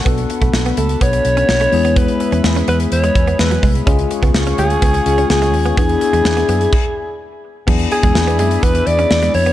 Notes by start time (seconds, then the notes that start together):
Already playing: A4 F#5
0.05 B1 B3 D4 F#4 A4 B5, kick, closed hi-hat
0.18 closed hi-hat
0.30 muted clean electric guitar stroke, closed hi-hat
0.42 B1 A3, kick, closed hi-hat
0.54 B1, muted clean electric guitar stroke, snare
0.66 B3, closed hi-hat
0.77 C#2 A3 A4, closed hi-hat
0.89 closed hi-hat
1.01 B1 B3 C#5, kick, closed hi-hat
1.13 muted clean electric guitar stroke, closed hi-hat
1.25 B1, closed hi-hat
1.37 C#4, closed hi-hat
1.49 B1, snare
1.61 A3, closed hi-hat
1.72 E2 G#3 B3 E4 G#4 B4 E5, muted clean electric guitar stroke, open hi-hat
1.85 B3, closed hi-hat
1.96 B3 B4, kick, closed hi-hat
2.08 closed hi-hat
2.20 muted clean electric guitar stroke, closed hi-hat
2.32 E2 C#4, closed hi-hat
2.44 E2, muted clean electric guitar stroke, snare
2.56 C#4, closed hi-hat
2.68 E2 B3 B4, closed hi-hat
2.80 closed hi-hat
2.92 E2 C#5, closed hi-hat
3.04 G#3, closed hi-hat
3.15 E2, muted clean electric guitar stroke, kick, closed hi-hat
3.27 B3, closed hi-hat
3.39 E2 G#3 B3 E4 G#4 B4, muted clean electric guitar stroke, snare
3.51 F#3, closed hi-hat
3.63 C2 G#3, kick, open hi-hat
3.75 closed hi-hat
3.86 C#2 G#3 C#4 F4 G#4 C#5 F5 C#6, kick, closed hi-hat
3.99 closed hi-hat
4.11 muted clean electric guitar stroke, closed hi-hat
4.23 C#2 B3, kick, closed hi-hat
4.34 C#2, muted clean electric guitar stroke, snare
4.46 C#4, closed hi-hat
4.58 D2 G#3 G#4, closed hi-hat
4.70 closed hi-hat
4.82 C#2 B3, kick, closed hi-hat
4.94 muted clean electric guitar stroke, closed hi-hat
5.05 C#2 G#3 C#4 F4 G#4, closed hi-hat
5.18 C#4, closed hi-hat
5.30 C#2 G#4, snare
5.42 G#3, closed hi-hat
5.53 D#2, muted clean electric guitar stroke, open hi-hat
5.66 B3, closed hi-hat
5.76 E2 B3 D4 E4 G#4 D5 E5 B5, kick, closed hi-hat
5.89 closed hi-hat
6.01 muted clean electric guitar stroke, closed hi-hat
6.13 E2 G#3, closed hi-hat
6.25 E2, muted clean electric guitar stroke, snare
6.37 B3, closed hi-hat
6.49 F#2 B3, closed hi-hat
6.61 closed hi-hat
6.73 kick, crash
7.67 E2 F#3 B3 D4 E4 G#4 D5 E5 B5, kick, crash
7.79 closed hi-hat
7.91 G#4, muted clean electric guitar stroke, closed hi-hat
8.03 E2 G#3, kick, closed hi-hat
8.15 E2, muted clean electric guitar stroke, snare
8.27 B3, closed hi-hat
8.39 F#2 G#3 G#4, closed hi-hat
8.51 closed hi-hat
8.63 E2 B3 B4, kick, closed hi-hat
8.75 muted clean electric guitar stroke, closed hi-hat
8.87 E2 D5, closed hi-hat
8.99 C#4, closed hi-hat
9.11 E2, snare
9.22 G#3, closed hi-hat
9.34 F2 C#5, muted clean electric guitar stroke, open hi-hat
9.46 B3, closed hi-hat